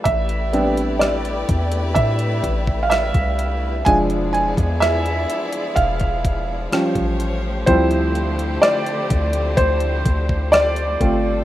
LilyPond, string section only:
\new Staff \with { instrumentName = "String section" } { \time 4/4 \key a \minor \tempo 4 = 63 << { <a g' d''>1 | <b d''>2. cis''4 | <d e'>2.~ <d e'>8 d'8 | } \\ { <e' b'>1 | <f e' gis'>2. <a g' bis'>4~ | <a g' bis'>2.~ <a g' bis'>8 <g a'>8 | } >> }